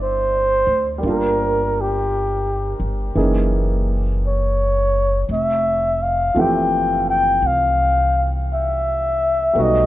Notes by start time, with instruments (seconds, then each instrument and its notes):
Already playing: upright bass G1, grand piano G3 C4 D4 E4 G4 A4
0.03 flugelhorn C5
0.67 upright bass D2
0.98 grand piano G3 A#3
1.03 upright bass G1, grand piano D4 F4
1.09 grand piano A#4, flugelhorn A#4
1.81 flugelhorn G4
2.80 upright bass G1
3.15 upright bass F#1, grand piano E3 A#3 C#4 D#4 G#4
4.27 flugelhorn C#5
5.29 upright bass F1
5.33 flugelhorn E5
6.03 flugelhorn F5
6.34 upright bass F#1, grand piano F3 A3 C4
6.38 grand piano E3 G4, flugelhorn G5
7.10 flugelhorn G5
7.42 upright bass C2
7.47 flugelhorn F5
8.54 flugelhorn E5
9.53 upright bass B1, grand piano G3 A3 B3
9.58 grand piano D#4 F#4
9.63 flugelhorn D#5